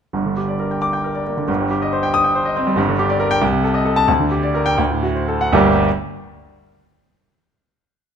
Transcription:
0.13 G1 G2
0.25 D3
0.37 G4
0.48 D5
0.60 A#4
0.71 G5
0.82 D6
0.93 G5
1.04 A#4
1.15 D5
1.26 A#3
1.37 D3
1.48 G1 G2
1.60 G3
1.71 G4
1.82 D#5
1.93 C5
2.03 G5
2.14 D#6
2.24 G5
2.35 C5
2.45 D#5
2.56 C4
2.67 G3
2.76 G1 G2
2.89 D3
2.99 G4
3.10 D5
3.20 A#4
3.31 G5
3.41 C2
3.52 C3
3.63 A4
3.74 D#5
3.85 A4
3.96 A5
4.08 D2
4.20 D3
4.31 G4
4.43 D5
4.55 A#4
4.66 G5
4.78 D2
4.90 A2
5.03 F#4
5.15 C5
5.28 A4
5.41 F#5
5.52 G1 D2 G3 A#3 D4 G4

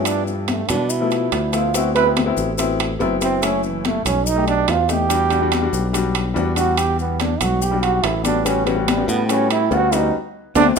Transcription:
Already playing: G2 F3 A3 B3 E4
0.05 D4, high conga, high timbale, maracas
0.26 F3, high conga, maracas
0.48 A3, high conga, high timbale, low timbale, maracas
0.68 B2 D4, low conga, high timbale, maracas
0.90 E4, high conga, maracas
1.00 F3 A3 B3 E4
1.11 high conga, high timbale, maracas
1.32 D2, high conga, high timbale, low timbale, maracas
1.52 F3 A3 B3 E4 F4, high timbale, maracas
1.74 F#3 B3 C4 E4 F#4, high conga, high timbale, maracas
1.94 F#3 B3 C4 E4 B4, high conga, high timbale, maracas
2.05 F#3 B3 C4 E4
2.16 high conga, high timbale, low timbale, maracas
2.26 F#3 B3 C4 E4
2.37 A1, high conga, maracas
2.57 F#3 B3 C4 E4, high conga, high timbale, maracas
2.80 high conga, high timbale, maracas
2.99 F#1 F#3 B3 C4 E4, high conga, low timbale, maracas
3.21 F#3 B3 C4 E4, high conga, high timbale, maracas
3.42 A3 C#4 E4, high conga, high timbale, maracas
3.63 E3, high conga, maracas
3.85 A3, high conga, high timbale, low timbale, maracas
4.05 B1 C#4, low conga, high timbale, maracas
4.27 D#4, high conga, maracas
4.36 A3 D#4 G4
4.47 D4, high conga, high timbale, maracas
4.68 E2 F4, high conga, high timbale, low timbale, maracas
4.89 A3 D#4 G4, high conga, high timbale, maracas
5.09 G3 D4 F#4, high conga, high timbale, maracas
5.30 G3 D4 F#4, high conga, high timbale, maracas
5.41 G3 D4 F#4
5.52 high conga, high timbale, low timbale, maracas
5.61 G3 D4 F#4
5.73 B1, high conga, maracas
5.93 G3 D4 F#4, high conga, high timbale, maracas
6.15 high conga, high timbale, maracas
6.34 E2 G3 D4 F#4, high conga, low timbale, maracas
6.55 G3 D4 F#4, high conga, high timbale, maracas
6.77 G4, high conga, high timbale, maracas
6.99 B3, high conga, maracas
7.20 D4, high conga, high timbale, low timbale, maracas
7.41 B1 F#4, low conga, high timbale, maracas
7.62 G4, high conga, maracas
7.71 G3 D4 F#4
7.82 F#4, high conga, high timbale, maracas
8.03 A1 E4, high conga, high timbale, low timbale, maracas
8.24 G3 D4 F#4, high conga, high timbale, maracas
8.45 G3 B3 C#4 F#4, high conga, high timbale, maracas
8.66 E3 G3 B3 C#4 F#4, high conga, high timbale, maracas
8.76 G3 B3 C#4 F#4
8.88 G3, high conga, high timbale, low timbale, maracas
8.97 G3 B3 C#4 F#4
9.08 A2 B3, high conga, maracas
9.28 G3 B3 C#4 F#4, high conga, high timbale, maracas
9.51 E4, high conga, high timbale, maracas
9.70 D2 G3 B3 C#4 F#4, high conga, low timbale, maracas
9.92 G3 B3 C#4 D#4 F#4, high conga, high timbale, maracas
10.55 D2 A3 C4 D4, high conga, high timbale, maracas

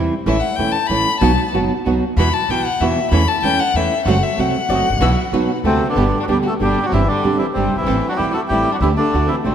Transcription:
Already playing: C3 E3 G3 C4 E4
0.26 A1 E3 A3 C#4 E4 E5
0.41 F#5
0.56 E1 E3 A3 C#4 E4 G5
0.60 E4
0.72 A5
0.87 A1 E3 A3 C#4 E4 B5
0.91 E4
1.21 B1 B2 F#3 B3 D#4 F#4 A5
1.53 F#1 B2 F#3 B3 D#4 F#4
1.85 B1 B2 F#3 B3 D#4 F#4
2.17 E2 B2 E3 B3 E4 F#4 B5
2.33 A5
2.49 B1 B2 E3 B3 E4 F#4 G5
2.65 F#5
2.80 E2 B2 E3 B3 E4 F#4 E5
3.11 E2 E3 A3 C#4 E4 A4 B5
3.28 A5
3.40 E2 C#4 E4 A4 G5 A5
3.44 E3 A3 C#4 E4
3.60 F#5
3.74 E2 E3 A3 C#4 E4 A4 E5
4.06 F#1 F#3 A3 C4 F#4 A4 F#5
4.23 E5
4.37 C2 F#3 A3 C4 F#4 A4 F#5
4.69 F#1 F#3 A3 C4 F#4 A4 D#5
4.90 G#1 A1
4.97 A#1 B1 B3
5.01 B2 E3 B3 E4 F#4 E5
5.32 B1 B2 F#3 B3 D#4 F#4 B4
5.64 D2 C3 D3 A3 C4 D4 F#4
5.89 D3 B3 D4
5.96 G1 B2 D3 G3 B3 D4 G4
6.20 F#3 D4 F#4
6.28 D2 B2 D3 G3 B3 D4 G4
6.32 G3
6.43 F#4
6.47 A3 A4
6.60 G1 B2 D3 G3 B3 D4 G4
6.83 D4 F#4
6.88 F#3 C4
6.92 G1 C3 E3 G3 C4 D4 E4 G4
7.07 D3 G3 D4
7.24 G1 C3 G3 C4 D4 G4
7.38 E3 C4 E4
7.54 G1 C3 G3 C4 D4 G4
7.58 G4
7.76 F#1 G1 E3 C4 E4
7.83 G#1 A1 E3 A3 C4 E4 A4
7.88 C4 E4
8.08 F#3 D4 F#4
8.16 E1 E3 G3 A3 C4 E4 G4 A4
8.32 A3 F#4 A4
8.48 A1 E3 G3 A3 C4 E4 G4 A4
8.52 E4
8.71 D4 F#4
8.77 D2 F#3
8.81 D3 E3 A3 D4 E4 G4
8.96 D3 A3 D4
9.13 D2 D3 A3 D4 F#4
9.27 C4 E4
9.32 E3
9.43 A1 D3 A3 C4 D4 F#4
9.48 C3

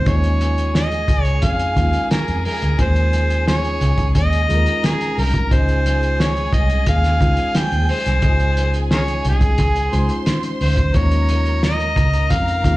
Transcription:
0.06 D#2 G#3 C#4 D#4 F4 G#4 C#5 G#5, kick, closed hi-hat
0.14 A#4
0.24 closed hi-hat
0.41 closed hi-hat, muted conga
0.58 closed hi-hat
0.75 D#5, snare, closed hi-hat, high conga
0.92 closed hi-hat
1.08 C#2, kick, closed hi-hat, low conga
1.24 C#5, closed hi-hat
1.42 F2 F5, kick, closed hi-hat, muted conga
1.60 closed hi-hat
1.76 D#2 G#3 C#4 D#4 F4 A#4, kick, closed hi-hat, muted conga
1.93 closed hi-hat
2.11 A#4, muted fingered electric bass stroke, snare, closed hi-hat, high conga
2.28 F2, closed hi-hat
2.45 A#4, open hi-hat, high conga
2.62 D2, closed hi-hat
2.78 D#2 G#3 C#4 D#4 F4 A#4 C5, kick, closed hi-hat
2.96 closed hi-hat
3.13 closed hi-hat, muted conga
3.30 closed hi-hat
3.48 C#5, snare, closed hi-hat, high conga
3.65 closed hi-hat
3.81 C#2, closed hi-hat, low conga
3.98 kick, closed hi-hat
4.15 D#2 D#5, kick, closed hi-hat
4.33 closed hi-hat
4.49 D#2 G#3 C#4 D#4 F4 G#4 A#4 A#5, closed hi-hat, muted conga
4.56 A#4
4.66 closed hi-hat
4.84 G#4, snare, closed hi-hat, high conga
5.01 closed hi-hat
5.18 C2 A#4, open hi-hat, high conga
5.34 kick, closed hi-hat
5.51 C#2 G#3 C#4 D#4 F4 G#4 A#4 C5 G#5, kick, closed hi-hat
5.58 D#5
5.69 closed hi-hat
5.86 closed hi-hat, muted conga
6.03 closed hi-hat
6.20 C#5, snare, closed hi-hat, high conga
6.37 closed hi-hat
6.53 C2 D#5, kick, closed hi-hat, low conga
6.70 closed hi-hat
6.86 D#2 F5, kick, closed hi-hat, muted conga
7.04 snare, closed hi-hat
7.20 C#2 G#3 C#4 D#4 F4 C5, kick, closed hi-hat, muted conga
7.37 closed hi-hat
7.55 G5, muted fingered electric bass stroke, snare, closed hi-hat, high conga
7.72 D#2, closed hi-hat
7.89 C5, open hi-hat, high conga
8.06 C2, snare, closed hi-hat
8.22 C#2 G#3 C#4 D#4 F4 D#5, kick, closed hi-hat
8.40 closed hi-hat
8.57 closed hi-hat, muted conga
8.74 closed hi-hat
8.91 G#4 A#4 C#5, snare, closed hi-hat, high conga
9.08 closed hi-hat
9.25 C2, closed hi-hat, low conga
9.29 G#4
9.41 kick, closed hi-hat
9.58 C#2, kick, closed hi-hat, muted conga
9.76 closed hi-hat
9.92 C#2 G#3 C#4 D#4 F4 C5 C6, closed hi-hat, muted conga
10.09 closed hi-hat
10.26 snare, closed hi-hat, high conga
10.43 closed hi-hat
10.61 D2 C5, open hi-hat, high conga
10.77 kick, closed hi-hat
10.94 D#2 G#3 C#4 D#4 F4 A#4 C#5 A#5, kick, closed hi-hat
11.11 closed hi-hat
11.29 closed hi-hat, muted conga
11.46 closed hi-hat
11.63 D#5, snare, closed hi-hat, high conga
11.80 closed hi-hat
11.96 C#2, kick, closed hi-hat, low conga
12.13 closed hi-hat
12.30 F2 F5, kick, closed hi-hat, muted conga
12.48 closed hi-hat
12.64 D#2 G#3 C#4 D#4 F4 G#4, kick, closed hi-hat, muted conga

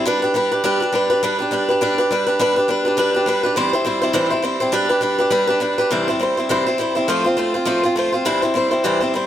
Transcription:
0.05 G3 D4 G4 B4
0.22 D4 G4 B4
0.34 G3 D4 G4 B4
0.52 D4 G4 B4
0.64 G3 D4 G4 B4
0.80 D4 G4 B4
0.92 G3 D4 G4 B4
1.10 D4 G4 B4
1.23 G3 D4 G4 B4
1.39 D4 G4 B4
1.51 G3 D4 G4 B4
1.69 D4 G4 B4
1.81 G3 D4 G4 B4
1.98 D4 G4 B4
2.11 G3 D4 G4 B4
2.27 D4 G4 B4
2.39 G3 D4 G4 B4
2.56 D4 G4 B4
2.68 G3 D4 G4 B4
2.85 D4 G4 B4
2.97 G3 D4 G4 B4
3.14 D4 G4 B4
3.26 G3 D4 G4 B4
3.43 D4 G4 B4
3.56 C3 E3 G3 C4 E4 C5
3.73 G3 C4 E4 C5
3.85 G3 C4 E4 C5
4.02 G3 C4 E4 C5
4.13 C3 E3 G3 C4 E4 C5
4.30 G3 C4 E4 C5
4.42 G3 C4 E4 C5
4.60 G3 C4 E4 C5
4.72 G3 D4 G4 B4
4.89 D4 G4 B4
5.01 G3 D4 G4 B4
5.18 D4 G4 B4
5.30 G3 D4 G4 B4
5.47 D4 G4 B4
5.60 G3 D4 G4 B4
5.78 D4 G4 B4
5.91 C3 E3 G3 C4 E4 C5
6.08 G3 C4 E4 C5
6.19 G3 C4 E4 C5
6.37 G3 C4 E4 C5
6.49 C3 E3 G3 C4 E4 C5
6.66 G3 C4 E4 C5
6.78 G3 C4 E4 C5
6.95 G3 C4 E4 C5
7.08 F3 A3 C4 F4 C5
7.24 C4 F4 C5
7.37 A3 C4 F4 C5
7.54 C4 F4 C5
7.65 F3 A3 C4 F4 C5
7.83 C4 F4 C5
7.96 A3 C4 F4 C5
8.12 C4 F4 C5
8.25 C3 E3 G3 C4 E4 C5
8.42 G3 C4 E4 C5
8.54 G3 C4 E4 C5
8.71 G3 C4 E4 C5
8.84 C3 E3 G3 C4 E4 C5
9.01 G3 C4 E4 C5
9.14 G3 C4 E4 C5

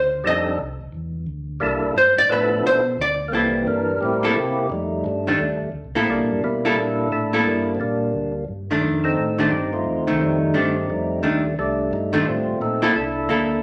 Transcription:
Already playing: D2 C5
0.24 F2 G3 C4 D4 D#4 A4 D#5
0.59 C2
0.81 C2
0.92 E2
1.27 D2
1.60 C2 G3 A#3 D4 E4 A4
1.83 C2
1.95 G2 C5
2.17 G2 D5
2.29 A2 F3 B3 D4 E4 A4 B4
2.62 B2
2.67 C5
2.97 D2
3.01 D5
3.28 C2 A#3
3.32 E3 G3 A#3 C4 E4 A4
3.66 G2 G3 D4 A#4
4.01 A2 C4 E4 G4
4.23 A#3 E4 A4
4.34 C3 A#3 E4 G4
4.69 F2 G3 A3 D#4
5.04 G2 G3 A3 D4
5.27 D#3 A3 D4
5.39 D#2
5.60 D#2
5.72 D2
5.85 C2
5.95 A2 A#3 E4 A4
6.05 C2 C4
6.10 G3 A#3 D4
6.19 A#2
6.31 G2
6.41 B2 G3 A#3 E4
6.65 A#3 E4 A4
6.76 A#2 D4 E4 A4
7.10 A2 D4 E4 A4
7.33 A#3 E4 A4
7.44 G2 G3 A#3 E4
7.75 C4
7.79 A#2 G3 A#3 D4
8.13 D2
8.49 G2
8.71 D#3 A3 D4
8.83 F2
9.04 C4 D#4 A4
9.17 A2
9.39 D#3 A3 D4 G4
9.51 G2 C4 D#4 G4
9.73 A3 C4 F4
9.85 E2
9.96 D#2
10.07 C2 D#3 A3
10.19 F2 G3 A3 D#4
10.54 G2 D#3 A3 C4 D4 D#4 G4
10.88 F2 G3 A3 D#4
11.22 D#2 D#3 A3 D4
11.57 C2 G3 A3 D4
11.91 G2 G3 A3 D#4
12.13 D#3 A3 D4
12.26 A2 A3 C4 F4
12.48 A2
12.60 A#2 C4 D#4 A4
12.82 A#2 A#3 E4 A4
12.94 C2 D4 E4 A4
13.29 D2 A#3 E4 A4

